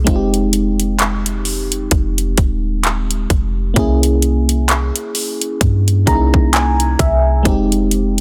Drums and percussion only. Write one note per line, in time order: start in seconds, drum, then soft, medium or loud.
0.07 kick loud
0.07 closed hi-hat medium
0.34 closed hi-hat soft
0.53 closed hi-hat medium
0.80 closed hi-hat soft
0.99 clap loud
0.99 closed hi-hat medium
1.26 closed hi-hat medium
1.45 open hi-hat soft
1.72 closed hi-hat medium
1.91 kick loud
1.91 closed hi-hat medium
2.18 closed hi-hat soft
2.38 kick loud
2.38 closed hi-hat medium
2.84 clap loud
2.84 closed hi-hat medium
3.11 closed hi-hat medium
3.30 kick loud
3.30 closed hi-hat medium
3.76 kick loud
3.76 closed hi-hat medium
4.03 closed hi-hat soft
4.22 closed hi-hat medium
4.49 closed hi-hat soft
4.69 clap loud
4.69 closed hi-hat medium
4.96 closed hi-hat medium
5.15 open hi-hat soft
5.42 closed hi-hat medium
5.61 kick loud
5.61 closed hi-hat medium
5.88 closed hi-hat medium
6.07 kick loud
6.07 closed hi-hat medium
6.34 kick medium
6.53 clap loud
6.53 closed hi-hat medium
6.80 closed hi-hat medium
6.99 kick loud
6.99 closed hi-hat medium
7.45 kick loud
7.45 closed hi-hat medium
7.72 closed hi-hat soft
7.91 closed hi-hat medium